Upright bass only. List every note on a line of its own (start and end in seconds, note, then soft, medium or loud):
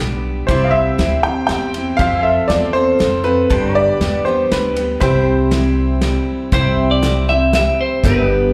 0.00 0.41 B1 medium
0.49 0.87 C2 medium
0.98 1.42 D2 medium
1.49 1.92 E2 medium
1.99 2.38 F2 medium
2.49 2.92 E2 medium
3.00 3.43 F2 medium
3.51 3.89 G2 medium
4.00 4.43 E2 medium
4.52 4.94 D2 medium
5.02 6.17 C2 medium
6.52 7.67 C2 medium
8.04 8.53 G1 medium